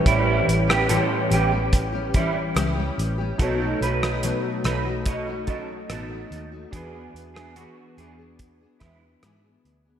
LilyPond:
<<
  \new Staff \with { instrumentName = "Synth keys" } { \time 4/4 \key a \mixolydian \tempo 4 = 72 <e' g' b' cis''>2.~ <e' g' b' cis''>8 r8 | <dis' fis' a' cis''>2~ <dis' fis' a' cis''>8 <dis' fis' a' dis''>4. | <d' fis' gis' b'>1 | }
  \new Staff \with { instrumentName = "Clean electric guitar" } { \time 4/4 \key a \mixolydian <g e'>8 r16 <b g'>16 <cis' a'>8 <b g'>16 r8. <g e'>16 r4 r16 | <dis' a'>8 <dis' b'>8. r16 <dis' b'>16 r16 <fis' dis''>8 <cis' a'>16 r16 <dis' a'>8. r16 | <b gis'>8 r16 <b gis'>16 <b fis'>8 <b gis'>16 r8. <gis e'>16 r4 r16 | }
  \new Staff \with { instrumentName = "Steel-string acoustic guitar" } { \time 4/4 \key a \mixolydian <a, e g cis' g'>8. <g cis' g'>16 <a, e g cis' g'>8 <e g cis' g'>16 <g cis' g'>8 <g cis' g'>16 <e g cis' g'>8 <a, e g cis' g'>16 <g cis' g'>8 <g cis' g'>16 | <b, fis a dis' fis'>16 <a dis' fis'>8 <a dis' fis'>16 <b, fis a dis' fis'>8 <fis a dis' fis'>16 <a dis' fis'>8 <a dis' fis'>16 <fis a dis' fis'>8 <b, fis a dis' fis'>16 <a dis' fis'>8 <a dis' fis'>16 | <e b d' gis'>16 <b d' gis'>8 <b d' gis'>16 <e b d' gis'>8 <e b d' gis'>16 <b d' gis'>8 <b d' gis'>16 <e b d' gis'>8 <e b d' gis'>16 <b d' gis'>8 <b d' gis'>16 | }
  \new Staff \with { instrumentName = "Fingered electric bass" } { \clef bass \time 4/4 \key a \mixolydian a,,8 a,,8. r16 a,,4. cis,8 a,,8 | b,,8 b,,8. r16 b,,4. a,,8 dis,8 | e,8 e,8. r16 e,4 e,8 gis,8 d,8 | }
  \new DrumStaff \with { instrumentName = "Drums" } \drummode { \time 4/4 <hh bd>8 hh16 ss16 hh8 hh8 <hh bd>8 <hh bd>8 <hh ss>8 hh8 | <hh bd>8 hh16 ss16 hh8 <hh ss>8 <hh bd>8 <hh bd>8 <hh ss>8 hh8 | <hh bd>8 hh16 ss16 hh8 hh8 <hh bd>8 <hh bd ss>8 <hh ss>8 hh8 | }
>>